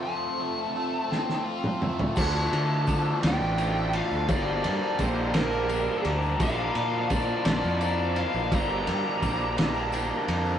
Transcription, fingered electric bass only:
X:1
M:6/8
L:1/16
Q:3/8=57
K:Gm
V:1 name="Fingered electric bass" clef=bass
z12 | D,,2 D,4 D,, A,,,4 D,, | G,,,2 G,, z B,,,6 D,,2 | B,,,2 B,,4 B,,, F,,4 B,,, |
G,,,2 G,, z B,,,6 F,,2 |]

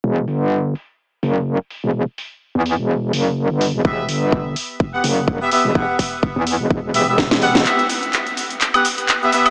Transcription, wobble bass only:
X:1
M:4/4
L:1/16
Q:"Swing 16ths" 1/4=126
K:Em
V:1 name="Wobble bass" clef=bass
E,,,2 G,,,4 z4 F,,,3 z2 E,,,- | E,,, z4 E,,2 E,,,3 F,,,3 G,,,2 E,,, | E,,,2 G,,,4 z4 F,,,3 z2 E,,,- | E,,, z4 E,,2 E,,,4 E,,,4 E,,, |
z16 |]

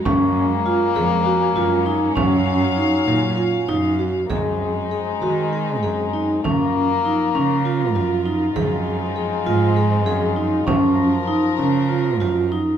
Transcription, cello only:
X:1
M:7/8
L:1/8
Q:1/4=99
K:Abmix
V:1 name="Cello" clef=bass
G,,3 F,, z G,,2 | G,,3 B,, z G,,2 | G,,3 E,2 G,,2 | G,,3 D,2 G,,2 |
G,,3 A,,2 G,,2 | G,,3 D,2 G,,2 |]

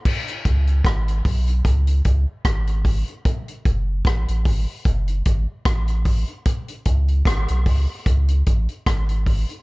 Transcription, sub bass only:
X:1
M:4/4
L:1/16
Q:"Swing 16ths" 1/4=75
K:C#phr
V:1 name="Sub bass" clef=bass
z2 C,,2 G,,,2 B,,,2 C,,2 C,, z G,,,3 z | z2 F,,,2 A,,, A,,, G,,, z F,,,2 G,,, z A,,,3 z | z2 C,,2 G,,, B,,, C,, z C,,2 A,,, z G,,,3 z |]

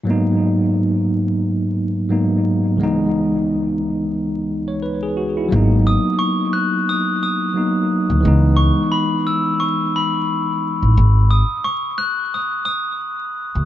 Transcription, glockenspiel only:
X:1
M:4/4
L:1/16
Q:"Swing 16ths" 1/4=88
K:G#m
V:1 name="Glockenspiel"
z16 | z16 | z2 d'2 c'2 f'2 d'2 d'3 z3 | z2 c'2 b2 e'2 c'2 b6 |
z2 d'2 c'2 f'2 d'2 d'3 z3 |]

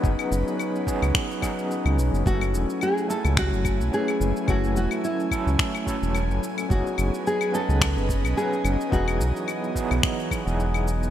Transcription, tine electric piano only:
X:1
M:4/4
L:1/16
Q:"Swing 16ths" 1/4=108
K:F#dor
V:1 name="Tine electric piano"
[F,B,CDG]6 [F,B,CDG]4 [F,B,CDG]6 | [F,A,CEA]6 [F,A,CEA] z4 z [F,A,CEB]4 | [F,A,CEA]6 [F,A,CEA]4 [F,A,CEA]6 | [F,B,CDG]6 [F,B,CDG] z4 z [F,B,CDB]4 |
[F,B,DEG]6 [F,B,DEG]4 z [F,B,DEG]4- [F,B,DEG] |]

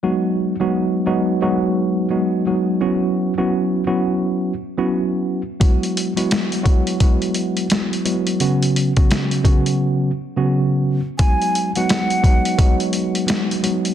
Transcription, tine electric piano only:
X:1
M:4/4
L:1/16
Q:"Swing 16ths" 1/4=86
K:G#m
V:1 name="Tine electric piano"
[F,G,B,DF]3 [F,G,B,DF]3 [F,G,B,DF]2 [F,G,B,DF]4 [F,G,B,DF]2 [F,G,B,DF]2 | [F,B,CEF]3 [F,B,CEF]3 [F,B,CEF]4 z [F,B,CEF]4 z | [F,G,B,EF]3 [F,G,B,EF]3 [F,G,B,EF]2 [F,G,B,EF]4 [F,G,B,EF]2 [F,G,B,EF]2 | [C,F,B,CF]3 [C,F,B,CF]3 [C,F,B,CF]4 z [C,F,B,CF]4 z |
[F,G,B,DF]3 [F,G,B,DF]3 [F,G,B,DF]2 [F,G,B,DF]4 [F,G,B,DF]2 [F,G,B,DF]2 |]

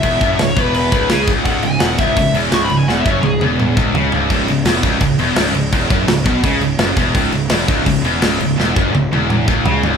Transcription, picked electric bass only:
X:1
M:4/4
L:1/8
Q:1/4=168
K:C#m
V:1 name="Picked electric bass" clef=bass
E,,, F,,, C,,, E,,,2 C,,, C,, C,,, | C,,, C,,, E,,, C,,, C,,, E,,, C,,, C,,, | E,,, F,,, C,,, E,,,2 C,,, C,, C,,, | C,,, C,,, E,,, C,,, C,,, E,,, C,,, C,,, |
E,,, F,,, C,,, B,,, C,, C,,, F,,, E,,, | C,,, C,,, E,,, C,,, C,,, E,,, C,,, C,,, | E,,, F,,, C,,, E,,,2 C,,, C,, C,,, |]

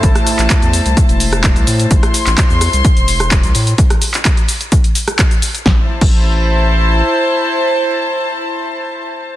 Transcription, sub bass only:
X:1
M:4/4
L:1/16
Q:1/4=128
K:Am
V:1 name="Sub bass" clef=bass
A,,, z2 A,,, z E,,2 C,, z E,,,4 C,, A,,2 | A,,, z2 A,,, z E,,2 C,, z E,,,4 C,, A,,2 | z16 | A,,, z2 A,,,8- A,,, z4 |
z16 |]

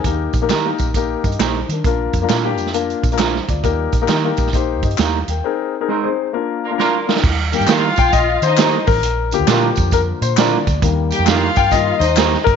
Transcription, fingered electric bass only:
X:1
M:4/4
L:1/16
Q:"Swing" 1/4=134
K:Eb
V:1 name="Fingered electric bass" clef=bass
E,,2 B,,,2 E,2 B,,,4 G,,2 B,,,2 E,2 | B,,,2 F,,2 B,,2 F,,4 B,,,4 D,,2 | E,,2 B,,,2 E,2 B,,,4 G,,2 E,,2 E,,2 | z16 |
E,,3 G,, E,2 B,,,2 B,,,2 E,4 =A,,,2 | B,,,3 D,, B,,2 F,,4 B,,4 D,,2 | E,,3 F,,3 G,,4 E,,4 G,,,2 |]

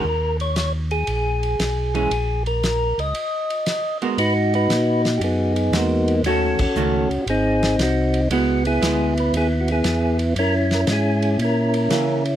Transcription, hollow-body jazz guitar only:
X:1
M:4/4
L:1/8
Q:"Swing" 1/4=116
K:Ebm
V:1 name="Hollow-body jazz guitar"
z6 z [_F,A,D] | z6 z [A,CGB] | [K:G#m] z6 [G,FA]2 | [D,=A,CF] z [D,A,CF] z4 z |
[G,B,E] z [G,B,E] z4 z | z6 [E,A,C] z |]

